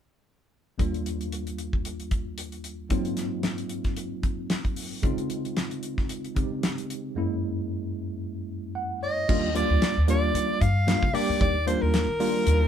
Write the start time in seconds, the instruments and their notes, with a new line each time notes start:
0.78 tine electric piano D#2 G3 A#3 D4 F4, kick, closed hi-hat
0.94 closed hi-hat
1.06 closed hi-hat
1.21 closed hi-hat
1.32 closed hi-hat
1.47 closed hi-hat
1.58 closed hi-hat
1.73 kick
1.85 closed hi-hat
2.00 closed hi-hat
2.11 kick, closed hi-hat
2.38 closed hi-hat
2.52 closed hi-hat
2.64 closed hi-hat
2.89 tine electric piano G#2 F#3 A#3 C4 D#4 F4, kick, closed hi-hat
3.05 closed hi-hat
3.17 snare, closed hi-hat
3.43 snare, closed hi-hat
3.58 closed hi-hat
3.69 closed hi-hat
3.84 kick, snare, closed hi-hat
3.97 closed hi-hat
4.23 kick, closed hi-hat
4.50 snare, closed hi-hat
4.65 kick, closed hi-hat
4.76 open hi-hat
5.02 tine electric piano C#3 G#3 C4 D#4 F4, kick, closed hi-hat
5.18 closed hi-hat
5.30 closed hi-hat
5.45 closed hi-hat
5.57 snare, closed hi-hat
5.71 closed hi-hat
5.83 closed hi-hat
5.98 kick, snare
6.09 closed hi-hat
6.25 closed hi-hat
6.35 tine electric piano C#3 G#3 C4 D#4 G4, kick, closed hi-hat
6.63 snare, closed hi-hat
6.78 closed hi-hat
6.90 closed hi-hat
7.15 tine electric piano F#2 G#3 A#3 C#4 E4
8.75 tine electric piano F#5
9.03 tine electric piano C#5, soprano saxophone D#5
9.28 upright bass D#2, tine electric piano G3 A#3 D4 F4, kick, crash
9.54 tine electric piano G3 A#3 D4 F4, soprano saxophone D5, closed hi-hat
9.70 upright bass D#2
9.82 snare, closed hi-hat
9.97 upright bass D#2
10.08 tine electric piano G3 A#3 D4 F4, soprano saxophone D5, closed hi-hat
10.34 upright bass D#3, closed hi-hat
10.61 upright bass G2, soprano saxophone F5, kick, closed hi-hat
10.87 tine electric piano G3 A#3 D4 F4, snare, closed hi-hat
11.02 upright bass C3, kick
11.14 tine electric piano G3 A#3 D4 G4, soprano saxophone D5, open hi-hat
11.29 upright bass D#3
11.41 upright bass D#2, soprano saxophone D5, kick, closed hi-hat
11.66 tine electric piano G3 A#3 D4 F4, soprano saxophone C5, closed hi-hat
11.82 upright bass D#2, soprano saxophone A#4
11.94 snare, closed hi-hat
12.08 upright bass D#3
12.20 tine electric piano G3 A#3 D4 F4, open hi-hat
12.46 upright bass D#2, closed hi-hat